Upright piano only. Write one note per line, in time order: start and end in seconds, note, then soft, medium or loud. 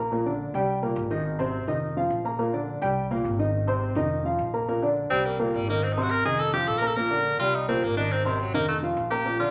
0.11 0.23 A#2 medium
0.11 0.23 A#3 medium
0.11 0.23 A#4 medium
0.26 0.49 D3 medium
0.26 0.49 D4 medium
0.26 0.49 D5 medium
0.54 0.77 G3 medium
0.54 0.77 G4 medium
0.54 0.78 G5 medium
0.82 1.05 A#2 medium
0.82 1.06 A#3 medium
0.82 1.06 A#4 medium
1.10 1.34 D#3 medium
1.10 1.34 D#4 medium
1.10 1.34 D#5 medium
1.39 1.62 C3 loud
1.39 1.63 C4 medium
1.39 1.63 C5 medium
1.68 1.91 D#3 medium
1.68 1.91 D#4 medium
1.68 1.91 D#5 medium
1.97 2.20 F3 medium
1.97 2.20 F4 medium
1.97 2.20 F5 medium
2.24 2.36 A#3 medium
2.24 2.37 A#4 medium
2.24 2.37 A#5 medium
2.38 2.50 A#2 medium
2.38 2.51 A#3 medium
2.38 2.51 A#4 medium
2.53 2.77 D3 medium
2.53 2.77 D4 medium
2.53 2.77 D5 medium
2.82 3.05 G3 medium
2.82 3.05 G4 medium
2.82 3.05 G5 medium
3.11 3.34 A#2 medium
3.11 3.34 A#3 medium
3.11 3.34 A#4 medium
3.39 3.62 D#3 medium
3.39 3.63 D#4 medium
3.39 3.63 D#5 medium
3.67 3.91 C3 medium
3.67 3.91 C4 medium
3.67 3.91 C5 medium
3.96 4.20 D#3 medium
3.96 4.20 D#4 medium
3.96 4.20 D#5 medium
4.25 4.48 F3 medium
4.25 4.48 F4 medium
4.25 4.49 F5 medium
4.53 4.65 A#3 medium
4.53 4.65 A#4 medium
4.53 4.65 A#5 medium
4.68 4.80 A#2 medium
4.68 4.80 A#3 medium
4.68 4.80 A#4 medium
4.82 5.06 D3 medium
4.82 5.06 D4 medium
4.82 5.06 D5 medium
5.10 5.34 G3 medium
5.10 5.34 G4 medium
5.10 5.34 G5 medium
5.39 5.63 A#2 medium
5.39 5.63 A#3 loud
5.39 5.63 A#4 loud
5.68 5.91 D#3 medium
5.68 5.92 D#4 medium
5.68 5.92 D#5 medium
5.97 6.20 C3 medium
5.97 6.20 C4 medium
5.97 6.21 C5 medium
6.25 6.48 D#3 medium
6.25 6.48 D#4 medium
6.25 6.49 D#5 medium
6.53 6.77 F3 medium
6.53 6.77 F4 medium
6.53 6.77 F5 medium
6.82 6.94 A#3 medium
6.82 6.94 A#4 medium
6.82 6.94 A#5 medium
6.96 7.08 A#2 medium
6.96 7.08 A#3 medium
6.96 7.09 A#4 medium
7.10 7.34 D3 medium
7.10 7.34 D4 medium
7.10 7.34 D5 medium
7.39 7.63 G3 medium
7.39 7.63 G4 medium
7.39 7.63 G5 medium
7.68 7.92 A#2 medium
7.68 7.92 A#3 medium
7.68 7.92 A#4 medium
7.97 8.20 D#3 medium
7.97 8.20 D#4 medium
7.97 8.20 D#5 medium
8.25 8.49 C3 medium
8.25 8.49 C4 medium
8.25 8.49 C5 medium
8.54 8.77 D#3 medium
8.54 8.77 D#4 medium
8.54 8.78 D#5 medium
8.83 9.06 F3 medium
8.83 9.06 F4 medium
8.83 9.06 F5 medium
9.11 9.23 A#3 medium
9.11 9.23 A#4 medium
9.11 9.23 A#5 medium
9.25 9.37 A#2 medium
9.25 9.37 A#3 medium
9.25 9.37 A#4 medium
9.39 9.51 D3 medium
9.39 9.51 D4 medium
9.39 9.51 D5 medium